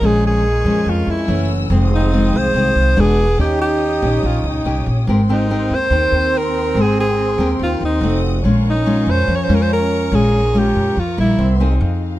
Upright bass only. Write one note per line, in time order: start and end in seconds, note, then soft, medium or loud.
0.01 0.61 A#1 medium
0.64 0.84 F2 medium
0.86 1.06 F2 medium
1.07 1.27 F2 medium
1.28 1.67 F#1 medium
1.70 2.29 F1 loud
2.33 2.53 C2 medium
2.54 2.74 C2 medium
2.76 2.95 C2 medium
2.96 3.36 E1 medium
3.38 3.98 D#2 medium
4.02 4.22 A#1 medium
4.23 4.42 A#1 medium
4.44 4.63 C#2 medium
4.65 4.84 C2 medium
4.86 5.05 A#1 medium
5.07 5.66 G#1 medium
5.70 5.90 D#2 medium
5.90 6.10 D#2 medium
6.12 6.71 D#2 medium
6.75 7.34 G#1 medium
7.38 7.58 D#2 medium
7.59 7.79 D#2 medium
7.81 8.00 D#2 medium
8.01 8.41 F1 loud
8.44 9.03 A#1 medium
9.07 9.26 F2 medium
9.28 9.48 F2 medium
9.49 10.08 F2 medium
10.12 10.71 A#1 medium
10.75 10.95 F2 medium
10.97 11.16 F2 medium
11.18 11.37 A#1 medium
11.39 11.78 C2 loud
11.81 12.19 F2 medium